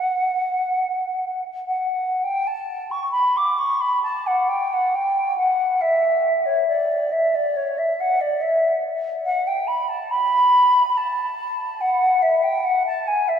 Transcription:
flute
Already playing: F#5
1.67 F#5
2.23 G5
2.47 A5
2.91 C#6
3.12 B5
3.37 D6
3.58 C#6
3.80 B5
4.03 A5
4.26 F#5
4.48 G5
4.73 F#5
4.95 G5
5.37 F#5
5.81 E5
6.46 C#5
6.67 D5
7.12 E5
7.34 D5
7.56 C#5
7.78 E5
8.00 F#5
8.21 D5
8.41 E5
9.25 F#5
9.47 G5
9.67 B5
9.89 A5
10.10 B5
10.97 A5
11.81 F#5
12.22 E5
12.43 G5
12.64 F#5
12.86 A5
13.07 G#5
13.28 E5

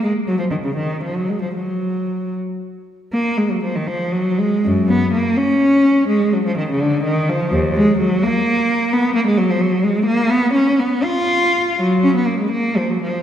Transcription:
cello
0.03 G#3
0.28 F#3
0.39 F3
0.51 D#3
0.64 C#3
0.77 D#3
1.03 F3
1.16 F#3
1.29 G#3
1.42 F3
1.55 F#3
3.13 A#3
3.38 G#3
3.51 F#3
3.64 F3
3.76 D#3
3.87 F3
4.12 F#3
4.38 G#3
4.65 F#2
4.89 B3
5.13 A#3
5.37 C#4
6.09 G#3
6.33 F#3
6.46 F3
6.57 D#3
6.70 C#3
6.82 D3
7.04 D#3
7.29 F3
7.52 D#2
7.75 G#3
8.00 F#3
8.24 A#3
8.93 B3
9.16 A#3
9.27 G#3
9.38 F#3
9.50 F3
9.61 F#3
9.84 G#3
10.06 A#3
10.30 B3
10.54 C#4
10.80 B3
11.04 F4
11.78 F#3
12.04 C#4
12.16 B3
12.27 A#3
12.40 G#3
12.52 A#3
12.77 F3
12.91 F#3
13.04 F3

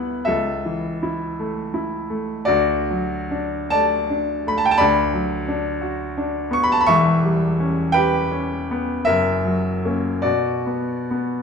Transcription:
grand piano
Already playing: D2 G3 B3 E4 G4 B4 D5 F#5
0.25 C#2 A4 E5
0.65 E3
1.03 E4
1.39 A3
1.74 E4
2.10 A3
2.45 D2 F#4 D5
2.90 F#3
3.31 D4
3.70 A3 D5 A5
4.10 D4
4.47 A3 B5
4.58 A5
4.65 G5
4.71 A5
4.78 D2 D5 B5
5.13 F#3
5.48 D4
5.81 F#4
6.17 D4
6.51 B3 C#6
6.63 B5
6.72 A5
6.81 B5
6.86 E1 E2 E5 C#6
7.24 G3
7.60 C#4
7.92 G4 B4 G5
8.31 C#4
8.71 B3
9.05 F#1 F#2 A#4 E5
9.45 F#3
9.85 A#3 C#4
10.22 B2 F#4 D5
10.66 B3
11.11 B3

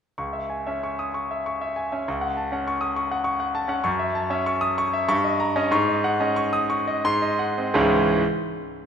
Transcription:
grand piano
0.18 C#2 C#6
0.33 E5
0.50 G#5
0.66 C#4 E5
0.83 C#6
0.99 D#6
1.14 C#6
1.31 E5
1.46 C#6
1.61 E5
1.76 G#5
1.92 C#4 E5
2.08 C#2 C#6
2.21 F#5
2.37 A5
2.52 C#4 F#5
2.67 C#6
2.81 D#6
2.96 C#6
3.11 F#5
3.24 C#6
3.40 F#5
3.55 A5
3.68 C#4 F#5
3.84 F#2 C#6
3.99 E5
4.15 A5
4.30 C#4 E5
4.46 C#6
4.61 D#6
4.78 C#6
4.93 E5
5.08 G2 C#6
5.24 D#5
5.40 A#5
5.56 C#4 D#5
5.71 G#2 C#6
5.88 D#5
6.04 F#5
6.20 C#4 D#5
6.36 C#6
6.53 D#6
6.70 C#6
6.87 D#5
7.05 G#2 C6
7.22 D#5
7.39 F#5
7.58 C4 D#5
7.74 C#2 G#2 E3 G#3 C#4 E4

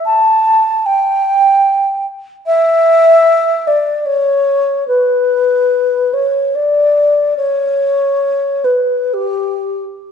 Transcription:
alto flute
0.05 A5
0.86 G5
2.46 E5
3.67 D5
4.06 C#5
4.88 B4
6.13 C#5
6.55 D5
7.37 C#5
8.64 B4
9.14 G4

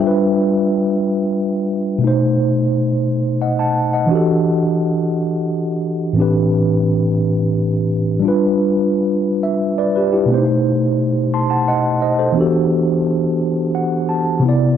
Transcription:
tine electric piano
Already playing: G3 D4 F4 E5 G5
0.01 A4
0.07 B4
1.98 B2 A3
2.04 D#4 C5
3.42 D#5 F#5
3.59 F#5 A5
3.93 D#5 F#5
4.06 E3 D4
4.11 F#4 G4
4.15 A4
6.13 A2 E3 C4
6.18 D4 G4 B4
8.19 G3 D4
8.25 F4 B4
9.43 E5
9.78 B4 D5
9.96 G4 B4
10.12 E4 G4
10.26 B2 A3
10.31 C4 C5
10.38 D#4
11.34 A5 C6
11.50 F#5 A5
11.68 D#5 F#5
12.02 C5 D#5
12.19 A4 C5
12.32 E3 B3 D4
12.37 F#4 G4 A4
13.75 F#5
14.09 A5
14.40 C3 B3
14.45 E4 D5

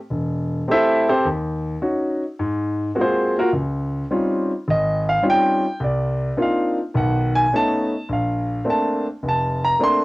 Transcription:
grand piano
0.10 E1
0.68 A3 C4 G4 A4 C5 E5
0.72 E4
1.09 C4 G4 A4 C5
1.25 D#2
1.82 C#4 D#4 F#4
2.39 G#2
2.95 G#3 A#3 C4 F4 F#4
3.01 C4 F#4 G#4 C5
3.39 A#3 F4 F#4 A#4
3.53 C#2
4.11 G3 C4 C#4 D#4 F4
4.68 G#1 D#5
5.09 F5
5.22 G3 C4 C#4 D#4 F4
5.30 G5
5.80 C2 D5
6.37 A#3 C4 D4 D#4 F4
6.42 F5
6.94 B1 D#3 F#5
7.35 G#5
7.53 A3 B3 C#4 D#4 A5
8.09 A#1 F5
8.65 A3 A#3 C4 D4
8.70 A5
9.23 F1
9.29 A5
9.64 A#5
9.79 A3 A#3 C4 D4
9.84 C6

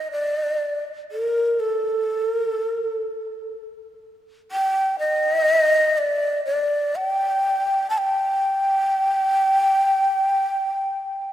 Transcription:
shakuhachi
0.12 D5
1.12 A#4
1.60 A4
2.32 A#4
2.47 A4
2.71 A#4
2.86 A4
4.52 G5
4.99 D#5
5.98 D5
6.46 D5
6.96 G5
7.90 A5
7.98 G5

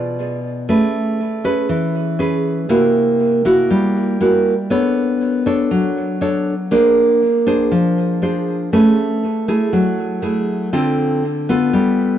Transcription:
nylon-string guitar
Already playing: B2 F4 G#4 D5
0.69 A3 C#4 G#4 B4
1.44 C#4 G#4 B4
1.69 E3
2.19 C#4 G#4 B4
2.69 C3 A#3 E4 F#4
3.45 A#3 E4 F#4
3.70 G3
4.21 A#3 E4 F#4
4.70 B3 D4 A4 C#5
5.46 D4 A4 C#5
5.71 F#3
6.21 D4 A4 C#5
6.71 A#3 D4 G#4 C5
7.47 D4 G#4 C5
7.71 F3
8.22 D4 G#4 C5
8.73 A3 C#4 G#4 B4
9.48 A3 E4 G#4
9.73 F#3
10.22 A3 E4 G#4
10.73 D3 C4 F4 A4
11.49 B3 F4 A4
11.73 G3

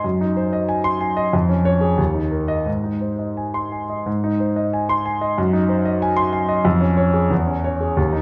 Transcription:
grand piano
0.04 F#2
0.21 D#4
0.37 C5
0.53 D#5
0.69 G#5
0.84 C6
1.01 G#5
1.17 D#5
1.33 F2
1.49 C#4
1.65 C#5
1.81 G#4
1.98 D#2
2.14 D#4
2.32 A#4
2.48 D#5
2.66 G#2
2.84 D#4
3.01 C5
3.19 D#5
3.37 G#5
3.54 C6
3.72 G#5
3.90 D#5
4.06 G#2
4.24 D#4
4.40 C5
4.56 D#5
4.73 G#5
4.89 C6
5.05 G#5
5.21 D#5
5.38 F#2
5.53 D#4
5.69 C5
5.85 D#5
6.02 G#5
6.16 C6
6.33 G#5
6.49 D#5
6.65 F2
6.81 C#4
6.97 C#5
7.14 G#4
7.30 E2
7.47 C#4
7.64 C#5
7.80 G#4
7.97 D#2
8.13 D#4

